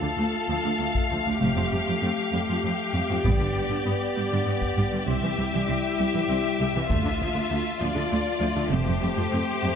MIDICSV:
0, 0, Header, 1, 8, 480
1, 0, Start_track
1, 0, Tempo, 610376
1, 1102, Time_signature, 6, 3, 24, 8
1, 7670, End_track
2, 0, Start_track
2, 0, Title_t, "Violin section"
2, 0, Program_c, 0, 48
2, 0, Note_on_c, 0, 77, 41
2, 2519, Note_off_c, 0, 77, 0
2, 2562, Note_on_c, 0, 74, 42
2, 3963, Note_off_c, 0, 74, 0
2, 3987, Note_on_c, 0, 76, 48
2, 6139, Note_off_c, 0, 76, 0
2, 6141, Note_on_c, 0, 74, 52
2, 6859, Note_off_c, 0, 74, 0
2, 6865, Note_on_c, 0, 72, 52
2, 7670, Note_off_c, 0, 72, 0
2, 7670, End_track
3, 0, Start_track
3, 0, Title_t, "Violin section"
3, 0, Program_c, 1, 48
3, 0, Note_on_c, 1, 69, 41
3, 1075, Note_off_c, 1, 69, 0
3, 1100, Note_on_c, 1, 67, 38
3, 3951, Note_off_c, 1, 67, 0
3, 3977, Note_on_c, 1, 67, 43
3, 5389, Note_off_c, 1, 67, 0
3, 5419, Note_on_c, 1, 65, 50
3, 6828, Note_off_c, 1, 65, 0
3, 6846, Note_on_c, 1, 67, 50
3, 7670, Note_off_c, 1, 67, 0
3, 7670, End_track
4, 0, Start_track
4, 0, Title_t, "French horn section"
4, 0, Program_c, 2, 60
4, 0, Note_on_c, 2, 57, 41
4, 0, Note_on_c, 2, 65, 43
4, 1068, Note_off_c, 2, 65, 0
4, 1122, Note_on_c, 2, 67, 42
4, 2508, Note_off_c, 2, 57, 0
4, 2542, Note_on_c, 2, 59, 48
4, 3950, Note_off_c, 2, 59, 0
4, 3962, Note_off_c, 2, 67, 0
4, 3974, Note_on_c, 2, 55, 41
4, 3975, Note_on_c, 2, 64, 49
4, 5287, Note_off_c, 2, 55, 0
4, 5287, Note_off_c, 2, 64, 0
4, 5421, Note_on_c, 2, 65, 46
4, 5423, Note_on_c, 2, 57, 51
4, 6826, Note_off_c, 2, 65, 0
4, 6858, Note_on_c, 2, 67, 54
4, 7670, Note_off_c, 2, 57, 0
4, 7670, Note_off_c, 2, 67, 0
4, 7670, End_track
5, 0, Start_track
5, 0, Title_t, "Viola section"
5, 0, Program_c, 3, 48
5, 17, Note_on_c, 3, 50, 36
5, 66, Note_off_c, 3, 50, 0
5, 137, Note_on_c, 3, 57, 43
5, 186, Note_off_c, 3, 57, 0
5, 388, Note_on_c, 3, 53, 27
5, 434, Note_off_c, 3, 53, 0
5, 509, Note_on_c, 3, 50, 30
5, 555, Note_off_c, 3, 50, 0
5, 634, Note_on_c, 3, 57, 34
5, 679, Note_off_c, 3, 57, 0
5, 875, Note_on_c, 3, 53, 28
5, 920, Note_off_c, 3, 53, 0
5, 994, Note_on_c, 3, 50, 30
5, 1039, Note_off_c, 3, 50, 0
5, 1109, Note_on_c, 3, 57, 47
5, 1156, Note_off_c, 3, 57, 0
5, 1237, Note_on_c, 3, 53, 27
5, 1282, Note_off_c, 3, 53, 0
5, 1356, Note_on_c, 3, 55, 29
5, 1402, Note_off_c, 3, 55, 0
5, 1474, Note_on_c, 3, 53, 30
5, 1520, Note_off_c, 3, 53, 0
5, 1590, Note_on_c, 3, 57, 45
5, 1637, Note_off_c, 3, 57, 0
5, 1833, Note_on_c, 3, 55, 35
5, 1880, Note_off_c, 3, 55, 0
5, 1960, Note_on_c, 3, 53, 33
5, 2005, Note_off_c, 3, 53, 0
5, 2076, Note_on_c, 3, 57, 40
5, 2122, Note_off_c, 3, 57, 0
5, 2320, Note_on_c, 3, 55, 33
5, 2365, Note_off_c, 3, 55, 0
5, 2427, Note_on_c, 3, 53, 33
5, 2474, Note_off_c, 3, 53, 0
5, 2549, Note_on_c, 3, 59, 38
5, 2596, Note_off_c, 3, 59, 0
5, 2675, Note_on_c, 3, 50, 29
5, 2721, Note_off_c, 3, 50, 0
5, 2792, Note_on_c, 3, 55, 28
5, 2839, Note_off_c, 3, 55, 0
5, 2911, Note_on_c, 3, 50, 40
5, 2957, Note_off_c, 3, 50, 0
5, 3027, Note_on_c, 3, 59, 46
5, 3075, Note_off_c, 3, 59, 0
5, 3271, Note_on_c, 3, 55, 38
5, 3317, Note_off_c, 3, 55, 0
5, 3388, Note_on_c, 3, 50, 34
5, 3435, Note_off_c, 3, 50, 0
5, 3509, Note_on_c, 3, 59, 42
5, 3556, Note_off_c, 3, 59, 0
5, 3745, Note_on_c, 3, 55, 32
5, 3792, Note_off_c, 3, 55, 0
5, 3870, Note_on_c, 3, 50, 36
5, 3917, Note_off_c, 3, 50, 0
5, 3985, Note_on_c, 3, 60, 38
5, 4033, Note_off_c, 3, 60, 0
5, 4112, Note_on_c, 3, 52, 34
5, 4158, Note_off_c, 3, 52, 0
5, 4234, Note_on_c, 3, 55, 34
5, 4279, Note_off_c, 3, 55, 0
5, 4357, Note_on_c, 3, 52, 37
5, 4402, Note_off_c, 3, 52, 0
5, 4464, Note_on_c, 3, 60, 43
5, 4511, Note_off_c, 3, 60, 0
5, 4712, Note_on_c, 3, 55, 35
5, 4758, Note_off_c, 3, 55, 0
5, 4833, Note_on_c, 3, 52, 37
5, 4879, Note_off_c, 3, 52, 0
5, 4949, Note_on_c, 3, 60, 45
5, 4996, Note_off_c, 3, 60, 0
5, 5193, Note_on_c, 3, 55, 39
5, 5239, Note_off_c, 3, 55, 0
5, 5312, Note_on_c, 3, 52, 38
5, 5357, Note_off_c, 3, 52, 0
5, 5428, Note_on_c, 3, 57, 47
5, 5474, Note_off_c, 3, 57, 0
5, 5549, Note_on_c, 3, 50, 36
5, 5595, Note_off_c, 3, 50, 0
5, 5667, Note_on_c, 3, 53, 35
5, 5713, Note_off_c, 3, 53, 0
5, 5778, Note_on_c, 3, 50, 38
5, 5826, Note_off_c, 3, 50, 0
5, 5897, Note_on_c, 3, 57, 53
5, 5945, Note_off_c, 3, 57, 0
5, 6134, Note_on_c, 3, 53, 41
5, 6182, Note_off_c, 3, 53, 0
5, 6249, Note_on_c, 3, 50, 41
5, 6298, Note_off_c, 3, 50, 0
5, 6361, Note_on_c, 3, 57, 59
5, 6412, Note_off_c, 3, 57, 0
5, 6609, Note_on_c, 3, 53, 38
5, 6659, Note_off_c, 3, 53, 0
5, 6724, Note_on_c, 3, 50, 46
5, 6775, Note_off_c, 3, 50, 0
5, 6849, Note_on_c, 3, 57, 45
5, 6899, Note_off_c, 3, 57, 0
5, 6964, Note_on_c, 3, 53, 39
5, 7014, Note_off_c, 3, 53, 0
5, 7078, Note_on_c, 3, 55, 42
5, 7129, Note_off_c, 3, 55, 0
5, 7209, Note_on_c, 3, 53, 45
5, 7258, Note_off_c, 3, 53, 0
5, 7319, Note_on_c, 3, 57, 58
5, 7370, Note_off_c, 3, 57, 0
5, 7563, Note_on_c, 3, 55, 36
5, 7613, Note_off_c, 3, 55, 0
5, 7670, End_track
6, 0, Start_track
6, 0, Title_t, "Cello section"
6, 0, Program_c, 4, 48
6, 12, Note_on_c, 4, 38, 27
6, 61, Note_off_c, 4, 38, 0
6, 135, Note_on_c, 4, 38, 43
6, 184, Note_off_c, 4, 38, 0
6, 382, Note_on_c, 4, 38, 35
6, 430, Note_off_c, 4, 38, 0
6, 511, Note_on_c, 4, 38, 32
6, 557, Note_off_c, 4, 38, 0
6, 626, Note_on_c, 4, 38, 42
6, 673, Note_off_c, 4, 38, 0
6, 874, Note_on_c, 4, 38, 34
6, 920, Note_off_c, 4, 38, 0
6, 995, Note_on_c, 4, 38, 35
6, 1040, Note_off_c, 4, 38, 0
6, 1116, Note_on_c, 4, 41, 49
6, 1161, Note_off_c, 4, 41, 0
6, 1230, Note_on_c, 4, 41, 30
6, 1277, Note_off_c, 4, 41, 0
6, 1350, Note_on_c, 4, 41, 31
6, 1397, Note_off_c, 4, 41, 0
6, 1476, Note_on_c, 4, 41, 31
6, 1522, Note_off_c, 4, 41, 0
6, 1588, Note_on_c, 4, 41, 44
6, 1635, Note_off_c, 4, 41, 0
6, 1827, Note_on_c, 4, 41, 34
6, 1875, Note_off_c, 4, 41, 0
6, 1959, Note_on_c, 4, 41, 31
6, 2004, Note_off_c, 4, 41, 0
6, 2073, Note_on_c, 4, 41, 42
6, 2120, Note_off_c, 4, 41, 0
6, 2313, Note_on_c, 4, 41, 36
6, 2359, Note_off_c, 4, 41, 0
6, 2438, Note_on_c, 4, 41, 35
6, 2483, Note_off_c, 4, 41, 0
6, 2548, Note_on_c, 4, 43, 47
6, 2595, Note_off_c, 4, 43, 0
6, 2672, Note_on_c, 4, 43, 26
6, 2719, Note_off_c, 4, 43, 0
6, 2790, Note_on_c, 4, 43, 35
6, 2837, Note_off_c, 4, 43, 0
6, 2907, Note_on_c, 4, 43, 28
6, 2955, Note_off_c, 4, 43, 0
6, 3033, Note_on_c, 4, 43, 47
6, 3079, Note_off_c, 4, 43, 0
6, 3276, Note_on_c, 4, 43, 34
6, 3321, Note_off_c, 4, 43, 0
6, 3393, Note_on_c, 4, 43, 30
6, 3439, Note_off_c, 4, 43, 0
6, 3502, Note_on_c, 4, 43, 47
6, 3550, Note_off_c, 4, 43, 0
6, 3749, Note_on_c, 4, 43, 39
6, 3796, Note_off_c, 4, 43, 0
6, 3869, Note_on_c, 4, 43, 34
6, 3916, Note_off_c, 4, 43, 0
6, 3990, Note_on_c, 4, 36, 51
6, 4037, Note_off_c, 4, 36, 0
6, 4112, Note_on_c, 4, 36, 32
6, 4159, Note_off_c, 4, 36, 0
6, 4229, Note_on_c, 4, 36, 33
6, 4276, Note_off_c, 4, 36, 0
6, 4356, Note_on_c, 4, 36, 36
6, 4401, Note_off_c, 4, 36, 0
6, 4468, Note_on_c, 4, 36, 50
6, 4515, Note_off_c, 4, 36, 0
6, 4712, Note_on_c, 4, 36, 34
6, 4758, Note_off_c, 4, 36, 0
6, 4831, Note_on_c, 4, 36, 34
6, 4877, Note_off_c, 4, 36, 0
6, 4949, Note_on_c, 4, 36, 51
6, 4996, Note_off_c, 4, 36, 0
6, 5190, Note_on_c, 4, 36, 40
6, 5236, Note_off_c, 4, 36, 0
6, 5306, Note_on_c, 4, 36, 39
6, 5353, Note_off_c, 4, 36, 0
6, 5425, Note_on_c, 4, 38, 54
6, 5472, Note_off_c, 4, 38, 0
6, 5542, Note_on_c, 4, 38, 33
6, 5589, Note_off_c, 4, 38, 0
6, 5668, Note_on_c, 4, 38, 35
6, 5714, Note_off_c, 4, 38, 0
6, 5778, Note_on_c, 4, 38, 37
6, 5826, Note_off_c, 4, 38, 0
6, 5898, Note_on_c, 4, 38, 58
6, 5946, Note_off_c, 4, 38, 0
6, 6144, Note_on_c, 4, 38, 45
6, 6190, Note_off_c, 4, 38, 0
6, 6256, Note_on_c, 4, 38, 38
6, 6304, Note_off_c, 4, 38, 0
6, 6380, Note_on_c, 4, 38, 59
6, 6428, Note_off_c, 4, 38, 0
6, 6615, Note_on_c, 4, 38, 44
6, 6663, Note_off_c, 4, 38, 0
6, 6730, Note_on_c, 4, 38, 45
6, 6780, Note_off_c, 4, 38, 0
6, 6851, Note_on_c, 4, 41, 55
6, 6900, Note_off_c, 4, 41, 0
6, 6970, Note_on_c, 4, 41, 42
6, 7019, Note_off_c, 4, 41, 0
6, 7096, Note_on_c, 4, 41, 43
6, 7144, Note_off_c, 4, 41, 0
6, 7218, Note_on_c, 4, 41, 43
6, 7265, Note_off_c, 4, 41, 0
6, 7339, Note_on_c, 4, 41, 54
6, 7386, Note_off_c, 4, 41, 0
6, 7575, Note_on_c, 4, 41, 45
6, 7622, Note_off_c, 4, 41, 0
6, 7670, End_track
7, 0, Start_track
7, 0, Title_t, "Double bass section"
7, 0, Program_c, 5, 48
7, 1111, Note_on_c, 5, 29, 45
7, 1219, Note_off_c, 5, 29, 0
7, 2549, Note_on_c, 5, 31, 45
7, 2659, Note_off_c, 5, 31, 0
7, 3987, Note_on_c, 5, 36, 52
7, 4097, Note_off_c, 5, 36, 0
7, 5427, Note_on_c, 5, 38, 48
7, 5536, Note_off_c, 5, 38, 0
7, 6861, Note_on_c, 5, 29, 58
7, 6971, Note_off_c, 5, 29, 0
7, 7670, End_track
8, 0, Start_track
8, 0, Title_t, "Taiko and cinematic ensemble drums"
8, 745, Note_on_c, 9, 41, 29
8, 824, Note_off_c, 9, 41, 0
8, 2552, Note_on_c, 9, 41, 43
8, 2631, Note_off_c, 9, 41, 0
8, 3627, Note_on_c, 9, 41, 26
8, 3705, Note_off_c, 9, 41, 0
8, 5422, Note_on_c, 9, 41, 43
8, 5501, Note_off_c, 9, 41, 0
8, 7670, End_track
0, 0, End_of_file